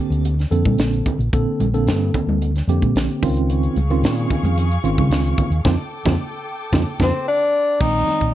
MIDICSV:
0, 0, Header, 1, 7, 480
1, 0, Start_track
1, 0, Key_signature, -2, "major"
1, 0, Tempo, 539568
1, 1186, Time_signature, 4, 2, 24, 8
1, 7419, End_track
2, 0, Start_track
2, 0, Title_t, "String section"
2, 0, Program_c, 0, 48
2, 3113, Note_on_c, 0, 85, 86
2, 3116, Note_on_c, 0, 77, 62
2, 3117, Note_on_c, 0, 68, 78
2, 5011, Note_off_c, 0, 85, 0
2, 5013, Note_off_c, 0, 68, 0
2, 5013, Note_off_c, 0, 77, 0
2, 5022, Note_on_c, 0, 69, 67
2, 5023, Note_on_c, 0, 79, 65
2, 5027, Note_on_c, 0, 86, 73
2, 6923, Note_off_c, 0, 69, 0
2, 6923, Note_off_c, 0, 79, 0
2, 6925, Note_off_c, 0, 86, 0
2, 7419, End_track
3, 0, Start_track
3, 0, Title_t, "Tenor saxophone"
3, 0, Program_c, 1, 66
3, 6241, Note_on_c, 1, 60, 80
3, 6457, Note_off_c, 1, 60, 0
3, 6477, Note_on_c, 1, 62, 93
3, 6946, Note_on_c, 1, 63, 94
3, 6960, Note_off_c, 1, 62, 0
3, 7419, Note_off_c, 1, 63, 0
3, 7419, End_track
4, 0, Start_track
4, 0, Title_t, "Tine electric piano"
4, 0, Program_c, 2, 4
4, 0, Note_on_c, 2, 50, 78
4, 0, Note_on_c, 2, 58, 64
4, 0, Note_on_c, 2, 60, 74
4, 0, Note_on_c, 2, 67, 93
4, 293, Note_off_c, 2, 50, 0
4, 293, Note_off_c, 2, 58, 0
4, 293, Note_off_c, 2, 60, 0
4, 293, Note_off_c, 2, 67, 0
4, 451, Note_on_c, 2, 50, 83
4, 455, Note_on_c, 2, 58, 66
4, 456, Note_on_c, 2, 60, 73
4, 456, Note_on_c, 2, 69, 77
4, 1038, Note_off_c, 2, 50, 0
4, 1040, Note_off_c, 2, 58, 0
4, 1041, Note_off_c, 2, 60, 0
4, 1041, Note_off_c, 2, 69, 0
4, 1182, Note_on_c, 2, 50, 71
4, 1183, Note_on_c, 2, 58, 68
4, 1185, Note_on_c, 2, 60, 70
4, 1185, Note_on_c, 2, 69, 89
4, 1474, Note_off_c, 2, 50, 0
4, 1475, Note_off_c, 2, 58, 0
4, 1475, Note_off_c, 2, 60, 0
4, 1476, Note_off_c, 2, 69, 0
4, 1546, Note_on_c, 2, 50, 86
4, 1546, Note_on_c, 2, 60, 70
4, 1549, Note_on_c, 2, 58, 77
4, 1550, Note_on_c, 2, 69, 86
4, 2221, Note_off_c, 2, 60, 0
4, 2222, Note_off_c, 2, 50, 0
4, 2223, Note_off_c, 2, 58, 0
4, 2223, Note_off_c, 2, 69, 0
4, 2392, Note_on_c, 2, 58, 69
4, 2394, Note_on_c, 2, 50, 77
4, 2395, Note_on_c, 2, 67, 86
4, 2397, Note_on_c, 2, 60, 77
4, 2862, Note_off_c, 2, 60, 0
4, 2870, Note_off_c, 2, 58, 0
4, 2870, Note_on_c, 2, 51, 92
4, 2871, Note_off_c, 2, 50, 0
4, 2872, Note_off_c, 2, 67, 0
4, 2873, Note_on_c, 2, 60, 79
4, 2873, Note_on_c, 2, 61, 84
4, 2874, Note_on_c, 2, 65, 100
4, 3351, Note_off_c, 2, 51, 0
4, 3352, Note_off_c, 2, 60, 0
4, 3352, Note_off_c, 2, 61, 0
4, 3353, Note_off_c, 2, 65, 0
4, 3475, Note_on_c, 2, 51, 89
4, 3476, Note_on_c, 2, 60, 76
4, 3479, Note_on_c, 2, 65, 99
4, 3480, Note_on_c, 2, 61, 74
4, 4146, Note_off_c, 2, 51, 0
4, 4147, Note_off_c, 2, 60, 0
4, 4148, Note_off_c, 2, 65, 0
4, 4149, Note_off_c, 2, 61, 0
4, 4304, Note_on_c, 2, 51, 72
4, 4304, Note_on_c, 2, 65, 87
4, 4305, Note_on_c, 2, 60, 72
4, 4305, Note_on_c, 2, 61, 72
4, 4885, Note_off_c, 2, 65, 0
4, 4886, Note_off_c, 2, 51, 0
4, 4886, Note_off_c, 2, 60, 0
4, 4886, Note_off_c, 2, 61, 0
4, 5024, Note_on_c, 2, 60, 88
4, 5024, Note_on_c, 2, 63, 79
4, 5025, Note_on_c, 2, 65, 84
4, 5104, Note_off_c, 2, 60, 0
4, 5104, Note_off_c, 2, 63, 0
4, 5104, Note_off_c, 2, 65, 0
4, 5387, Note_on_c, 2, 63, 90
4, 5391, Note_on_c, 2, 60, 93
4, 5391, Note_on_c, 2, 65, 86
4, 5463, Note_off_c, 2, 63, 0
4, 5466, Note_off_c, 2, 60, 0
4, 5466, Note_off_c, 2, 65, 0
4, 5983, Note_on_c, 2, 60, 90
4, 5983, Note_on_c, 2, 63, 82
4, 5984, Note_on_c, 2, 65, 82
4, 6062, Note_off_c, 2, 60, 0
4, 6063, Note_off_c, 2, 63, 0
4, 6063, Note_off_c, 2, 65, 0
4, 6225, Note_on_c, 2, 63, 83
4, 6227, Note_on_c, 2, 60, 91
4, 6229, Note_on_c, 2, 65, 82
4, 6303, Note_off_c, 2, 63, 0
4, 6305, Note_off_c, 2, 60, 0
4, 6306, Note_off_c, 2, 65, 0
4, 6947, Note_on_c, 2, 60, 52
4, 6948, Note_on_c, 2, 79, 61
4, 6949, Note_on_c, 2, 51, 62
4, 6950, Note_on_c, 2, 56, 53
4, 7419, Note_off_c, 2, 51, 0
4, 7419, Note_off_c, 2, 56, 0
4, 7419, Note_off_c, 2, 60, 0
4, 7419, Note_off_c, 2, 79, 0
4, 7419, End_track
5, 0, Start_track
5, 0, Title_t, "Fingered electric bass"
5, 0, Program_c, 3, 33
5, 91, Note_on_c, 3, 38, 80
5, 391, Note_off_c, 3, 38, 0
5, 453, Note_on_c, 3, 41, 86
5, 558, Note_off_c, 3, 41, 0
5, 578, Note_on_c, 3, 46, 75
5, 678, Note_off_c, 3, 46, 0
5, 689, Note_on_c, 3, 34, 87
5, 892, Note_off_c, 3, 34, 0
5, 1056, Note_on_c, 3, 34, 81
5, 1158, Note_off_c, 3, 34, 0
5, 1182, Note_on_c, 3, 34, 97
5, 1284, Note_off_c, 3, 34, 0
5, 1419, Note_on_c, 3, 34, 81
5, 1661, Note_on_c, 3, 43, 76
5, 1674, Note_off_c, 3, 34, 0
5, 1860, Note_off_c, 3, 43, 0
5, 2018, Note_on_c, 3, 38, 79
5, 2317, Note_off_c, 3, 38, 0
5, 2380, Note_on_c, 3, 41, 92
5, 2483, Note_off_c, 3, 41, 0
5, 2508, Note_on_c, 3, 46, 77
5, 2605, Note_off_c, 3, 46, 0
5, 2625, Note_on_c, 3, 34, 92
5, 2726, Note_off_c, 3, 34, 0
5, 2868, Note_on_c, 3, 37, 102
5, 3262, Note_off_c, 3, 37, 0
5, 3342, Note_on_c, 3, 37, 81
5, 3585, Note_on_c, 3, 46, 81
5, 3598, Note_off_c, 3, 37, 0
5, 3783, Note_off_c, 3, 46, 0
5, 3942, Note_on_c, 3, 41, 85
5, 4239, Note_off_c, 3, 41, 0
5, 4301, Note_on_c, 3, 32, 95
5, 4404, Note_off_c, 3, 32, 0
5, 4431, Note_on_c, 3, 49, 84
5, 4527, Note_off_c, 3, 49, 0
5, 4534, Note_on_c, 3, 37, 98
5, 4737, Note_off_c, 3, 37, 0
5, 4897, Note_on_c, 3, 39, 89
5, 4999, Note_off_c, 3, 39, 0
5, 5023, Note_on_c, 3, 41, 83
5, 5116, Note_off_c, 3, 41, 0
5, 5384, Note_on_c, 3, 41, 96
5, 5474, Note_off_c, 3, 41, 0
5, 5983, Note_on_c, 3, 41, 85
5, 6075, Note_off_c, 3, 41, 0
5, 6223, Note_on_c, 3, 41, 89
5, 6315, Note_off_c, 3, 41, 0
5, 6943, Note_on_c, 3, 34, 83
5, 7140, Note_off_c, 3, 34, 0
5, 7301, Note_on_c, 3, 34, 73
5, 7400, Note_off_c, 3, 34, 0
5, 7419, End_track
6, 0, Start_track
6, 0, Title_t, "Muted fingered electric bass strokes"
6, 7178, Note_on_c, 9, 29, 31
6, 7267, Note_off_c, 9, 29, 0
6, 7419, End_track
7, 0, Start_track
7, 0, Title_t, "Drums"
7, 107, Note_on_c, 9, 42, 41
7, 196, Note_off_c, 9, 42, 0
7, 223, Note_on_c, 9, 42, 78
7, 312, Note_off_c, 9, 42, 0
7, 347, Note_on_c, 9, 42, 37
7, 358, Note_on_c, 9, 38, 30
7, 436, Note_off_c, 9, 42, 0
7, 447, Note_off_c, 9, 38, 0
7, 463, Note_on_c, 9, 42, 58
7, 552, Note_off_c, 9, 42, 0
7, 582, Note_on_c, 9, 36, 68
7, 585, Note_on_c, 9, 63, 69
7, 671, Note_off_c, 9, 36, 0
7, 674, Note_off_c, 9, 63, 0
7, 698, Note_on_c, 9, 42, 82
7, 709, Note_on_c, 9, 38, 100
7, 787, Note_off_c, 9, 42, 0
7, 798, Note_off_c, 9, 38, 0
7, 827, Note_on_c, 9, 42, 38
7, 916, Note_off_c, 9, 42, 0
7, 943, Note_on_c, 9, 36, 80
7, 944, Note_on_c, 9, 42, 65
7, 946, Note_on_c, 9, 64, 67
7, 1032, Note_off_c, 9, 36, 0
7, 1033, Note_off_c, 9, 42, 0
7, 1035, Note_off_c, 9, 64, 0
7, 1070, Note_on_c, 9, 42, 33
7, 1159, Note_off_c, 9, 42, 0
7, 1184, Note_on_c, 9, 36, 101
7, 1186, Note_on_c, 9, 42, 81
7, 1273, Note_off_c, 9, 36, 0
7, 1275, Note_off_c, 9, 42, 0
7, 1425, Note_on_c, 9, 63, 66
7, 1426, Note_on_c, 9, 42, 63
7, 1514, Note_off_c, 9, 63, 0
7, 1515, Note_off_c, 9, 42, 0
7, 1548, Note_on_c, 9, 42, 37
7, 1637, Note_off_c, 9, 42, 0
7, 1666, Note_on_c, 9, 42, 79
7, 1677, Note_on_c, 9, 38, 101
7, 1755, Note_off_c, 9, 42, 0
7, 1766, Note_off_c, 9, 38, 0
7, 1906, Note_on_c, 9, 42, 54
7, 1907, Note_on_c, 9, 36, 83
7, 1914, Note_on_c, 9, 64, 74
7, 1994, Note_off_c, 9, 42, 0
7, 1996, Note_off_c, 9, 36, 0
7, 2003, Note_off_c, 9, 64, 0
7, 2035, Note_on_c, 9, 63, 62
7, 2124, Note_off_c, 9, 63, 0
7, 2151, Note_on_c, 9, 42, 79
7, 2240, Note_off_c, 9, 42, 0
7, 2273, Note_on_c, 9, 42, 40
7, 2284, Note_on_c, 9, 38, 36
7, 2362, Note_off_c, 9, 42, 0
7, 2373, Note_off_c, 9, 38, 0
7, 2392, Note_on_c, 9, 42, 62
7, 2481, Note_off_c, 9, 42, 0
7, 2512, Note_on_c, 9, 36, 69
7, 2512, Note_on_c, 9, 42, 32
7, 2515, Note_on_c, 9, 63, 59
7, 2601, Note_off_c, 9, 36, 0
7, 2601, Note_off_c, 9, 42, 0
7, 2604, Note_off_c, 9, 63, 0
7, 2631, Note_on_c, 9, 42, 69
7, 2641, Note_on_c, 9, 38, 101
7, 2720, Note_off_c, 9, 42, 0
7, 2730, Note_off_c, 9, 38, 0
7, 2755, Note_on_c, 9, 42, 37
7, 2844, Note_off_c, 9, 42, 0
7, 2871, Note_on_c, 9, 36, 96
7, 2874, Note_on_c, 9, 46, 82
7, 2874, Note_on_c, 9, 64, 61
7, 2960, Note_off_c, 9, 36, 0
7, 2963, Note_off_c, 9, 46, 0
7, 2963, Note_off_c, 9, 64, 0
7, 2996, Note_on_c, 9, 42, 32
7, 3085, Note_off_c, 9, 42, 0
7, 3111, Note_on_c, 9, 42, 80
7, 3200, Note_off_c, 9, 42, 0
7, 3231, Note_on_c, 9, 42, 36
7, 3320, Note_off_c, 9, 42, 0
7, 3348, Note_on_c, 9, 42, 51
7, 3357, Note_on_c, 9, 63, 51
7, 3437, Note_off_c, 9, 42, 0
7, 3446, Note_off_c, 9, 63, 0
7, 3473, Note_on_c, 9, 42, 35
7, 3562, Note_off_c, 9, 42, 0
7, 3592, Note_on_c, 9, 42, 81
7, 3602, Note_on_c, 9, 38, 110
7, 3681, Note_off_c, 9, 42, 0
7, 3691, Note_off_c, 9, 38, 0
7, 3712, Note_on_c, 9, 42, 37
7, 3801, Note_off_c, 9, 42, 0
7, 3829, Note_on_c, 9, 36, 82
7, 3829, Note_on_c, 9, 42, 58
7, 3834, Note_on_c, 9, 64, 63
7, 3918, Note_off_c, 9, 36, 0
7, 3918, Note_off_c, 9, 42, 0
7, 3923, Note_off_c, 9, 64, 0
7, 3955, Note_on_c, 9, 42, 37
7, 3956, Note_on_c, 9, 63, 62
7, 4044, Note_off_c, 9, 42, 0
7, 4045, Note_off_c, 9, 63, 0
7, 4070, Note_on_c, 9, 42, 75
7, 4159, Note_off_c, 9, 42, 0
7, 4193, Note_on_c, 9, 42, 43
7, 4282, Note_off_c, 9, 42, 0
7, 4312, Note_on_c, 9, 42, 55
7, 4401, Note_off_c, 9, 42, 0
7, 4431, Note_on_c, 9, 36, 73
7, 4435, Note_on_c, 9, 63, 55
7, 4520, Note_off_c, 9, 36, 0
7, 4524, Note_off_c, 9, 63, 0
7, 4548, Note_on_c, 9, 42, 83
7, 4559, Note_on_c, 9, 38, 102
7, 4637, Note_off_c, 9, 42, 0
7, 4648, Note_off_c, 9, 38, 0
7, 4671, Note_on_c, 9, 42, 45
7, 4760, Note_off_c, 9, 42, 0
7, 4785, Note_on_c, 9, 42, 62
7, 4786, Note_on_c, 9, 36, 89
7, 4790, Note_on_c, 9, 64, 67
7, 4874, Note_off_c, 9, 42, 0
7, 4875, Note_off_c, 9, 36, 0
7, 4879, Note_off_c, 9, 64, 0
7, 4908, Note_on_c, 9, 42, 38
7, 4997, Note_off_c, 9, 42, 0
7, 5026, Note_on_c, 9, 36, 92
7, 5026, Note_on_c, 9, 64, 87
7, 5033, Note_on_c, 9, 38, 87
7, 5115, Note_off_c, 9, 36, 0
7, 5115, Note_off_c, 9, 64, 0
7, 5122, Note_off_c, 9, 38, 0
7, 5387, Note_on_c, 9, 36, 89
7, 5391, Note_on_c, 9, 64, 97
7, 5398, Note_on_c, 9, 38, 88
7, 5476, Note_off_c, 9, 36, 0
7, 5480, Note_off_c, 9, 64, 0
7, 5487, Note_off_c, 9, 38, 0
7, 5985, Note_on_c, 9, 36, 83
7, 5990, Note_on_c, 9, 64, 100
7, 5995, Note_on_c, 9, 38, 88
7, 6073, Note_off_c, 9, 36, 0
7, 6079, Note_off_c, 9, 64, 0
7, 6084, Note_off_c, 9, 38, 0
7, 6225, Note_on_c, 9, 36, 86
7, 6229, Note_on_c, 9, 64, 92
7, 6237, Note_on_c, 9, 38, 85
7, 6314, Note_off_c, 9, 36, 0
7, 6318, Note_off_c, 9, 64, 0
7, 6326, Note_off_c, 9, 38, 0
7, 6944, Note_on_c, 9, 36, 102
7, 6946, Note_on_c, 9, 49, 92
7, 7033, Note_off_c, 9, 36, 0
7, 7035, Note_off_c, 9, 49, 0
7, 7185, Note_on_c, 9, 63, 51
7, 7189, Note_on_c, 9, 42, 47
7, 7199, Note_on_c, 9, 38, 25
7, 7274, Note_off_c, 9, 63, 0
7, 7277, Note_off_c, 9, 42, 0
7, 7288, Note_off_c, 9, 38, 0
7, 7305, Note_on_c, 9, 36, 58
7, 7394, Note_off_c, 9, 36, 0
7, 7419, End_track
0, 0, End_of_file